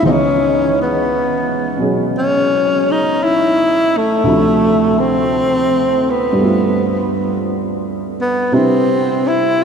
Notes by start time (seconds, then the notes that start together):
0.02 C#2 C#3 E3 B3 C4
0.07 D#5
0.11 C#4
0.82 B3
1.78 B2 F#3 C#4
1.82 G#4
2.18 C#4
2.91 D#4
3.23 E4
3.97 A3
4.24 D2 D3 F3
4.28 C3 E4
4.99 C4
6.10 B3
6.33 G2 G3
6.39 A3 B3
6.44 F4
8.21 B3
8.52 C3 G3 C4 D4 E4 B4
9.27 E4